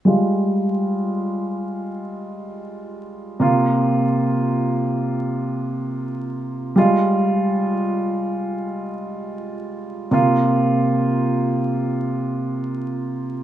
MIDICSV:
0, 0, Header, 1, 2, 480
1, 0, Start_track
1, 0, Key_signature, -4, "minor"
1, 0, Tempo, 500000
1, 12897, End_track
2, 0, Start_track
2, 0, Title_t, "Grand piano"
2, 0, Program_c, 0, 0
2, 47, Note_on_c, 0, 55, 69
2, 59, Note_on_c, 0, 56, 68
2, 70, Note_on_c, 0, 65, 83
2, 239, Control_c, 0, 64, 127
2, 3234, Note_off_c, 0, 55, 0
2, 3240, Note_off_c, 0, 56, 0
2, 3245, Note_off_c, 0, 65, 0
2, 3260, Note_on_c, 0, 48, 78
2, 3272, Note_on_c, 0, 58, 65
2, 3283, Note_on_c, 0, 65, 87
2, 3286, Control_c, 0, 64, 0
2, 3477, Control_c, 0, 64, 127
2, 6451, Note_off_c, 0, 48, 0
2, 6457, Note_off_c, 0, 58, 0
2, 6463, Note_off_c, 0, 65, 0
2, 6486, Note_on_c, 0, 55, 77
2, 6498, Note_on_c, 0, 56, 67
2, 6508, Control_c, 0, 64, 0
2, 6509, Note_on_c, 0, 65, 84
2, 6659, Control_c, 0, 64, 127
2, 9676, Note_off_c, 0, 55, 0
2, 9682, Note_off_c, 0, 56, 0
2, 9687, Note_off_c, 0, 65, 0
2, 9707, Note_on_c, 0, 48, 78
2, 9719, Note_on_c, 0, 58, 70
2, 9730, Note_on_c, 0, 65, 91
2, 9733, Control_c, 0, 64, 0
2, 9918, Control_c, 0, 64, 127
2, 12897, Note_off_c, 0, 48, 0
2, 12897, Note_off_c, 0, 58, 0
2, 12897, Note_off_c, 0, 65, 0
2, 12897, End_track
0, 0, End_of_file